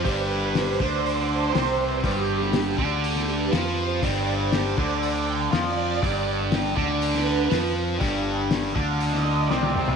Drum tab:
HH |o---o---o---o---|o---o---o---o---|o---o---o---o---|o---o---o---o---|
SD |----o-------o---|---oo----o--o---|----o-------o---|----o----o--o---|
T1 |----------------|----------------|----------------|----------------|
T2 |----------------|----------------|----------------|----------------|
FT |----------------|----------------|----------------|----------------|
BD |o-----o---------|o-----o---------|o-----o---------|o-----o---------|

HH |o---o---o-------|
SD |----o----o--o---|
T1 |-------------o--|
T2 |--------------o-|
FT |---------------o|
BD |o-----o---------|